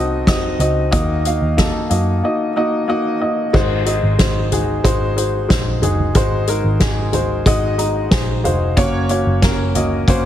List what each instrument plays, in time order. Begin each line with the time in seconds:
Already playing: picked electric bass C2, upright piano C3 C4 D#4 F#4 A4 A#4 D#5
0.27 upright piano C4 D#4 F#4 D#5, kick, snare, closed hi-hat
0.59 picked electric bass C#2, upright piano C4 D#4 F#4 D#5, closed hi-hat
0.91 picked electric bass D#2, upright piano D#3 A#3 D#4 F#4 D#5, kick, closed hi-hat
1.25 upright piano A#3 D#4 F#4 F5, closed hi-hat
1.42 picked electric bass D#2
1.57 upright piano A#3 D#4 F#4 A4, kick, snare, closed hi-hat
1.90 picked electric bass F#2, upright piano A#3 D#4 F#4 D#5, closed hi-hat
2.23 upright piano A#3 D#4 F#4 D#5
2.56 upright piano A#3 D#4 F#4 D#5
2.88 upright piano A#3 D#4 F#4 D#5
3.21 upright piano A#3 D#4 F#4 D#5
3.53 picked electric bass G#1, upright piano G#2 G#3 D#4 F#4 C5, kick, crash
3.86 upright piano G#3 D#4 F#4 D#5, closed hi-hat
4.03 picked electric bass G#1
4.19 upright piano G#3 D#4 F#4 C5, kick, snare, closed hi-hat
4.52 upright piano G#3 D#4 F#4 G#4, closed hi-hat, floor tom
4.84 picked electric bass G#1, upright piano G#3 D#4 F#4 C5, kick, closed hi-hat
5.16 upright piano G#3 D#4 F#4 C5, closed hi-hat
5.48 picked electric bass A#1, upright piano G#3 D#4 F#4 C5, kick, snare, closed hi-hat
5.82 picked electric bass F#1, upright piano G#3 D#4 F#4 G#4, closed hi-hat, floor tom
5.99 floor tom
6.15 picked electric bass G#1, upright piano G#2 G#3 D#4 F#4 C5, kick, closed hi-hat
6.47 upright piano G#3 D#4 F#4 A#4, closed hi-hat
6.64 picked electric bass G#1
6.80 picked electric bass G#1, upright piano G#3 D#4 F#4 G#4, kick, snare, closed hi-hat
7.13 upright piano G#3 D#4 F#4 C5, closed hi-hat, floor tom
7.46 picked electric bass G#1, upright piano G#3 D#4 F#4 D#5, kick, closed hi-hat
7.78 upright piano G#3 D#4 F#4 D#5 A#5, closed hi-hat
8.11 picked electric bass A#1, upright piano G#3 D#4 F#4 C5 G#5, kick, snare, closed hi-hat
8.44 picked electric bass F1, upright piano G#3 D#4 F#4 C5 F5, closed hi-hat, floor tom
8.77 picked electric bass F#1, upright piano A#3 C#4 F#4 C#5, kick, closed hi-hat
9.09 upright piano A#3 C#4 F#4 C#5, closed hi-hat
9.27 picked electric bass F#1
9.42 picked electric bass F#1, upright piano A#3 C#4 F#4 A#4, kick, snare, closed hi-hat
9.75 upright piano A#3 C#4 F#4 D#5, closed hi-hat, floor tom
10.08 picked electric bass F#1, upright piano A#3 C#4 F#4 C5, kick, closed hi-hat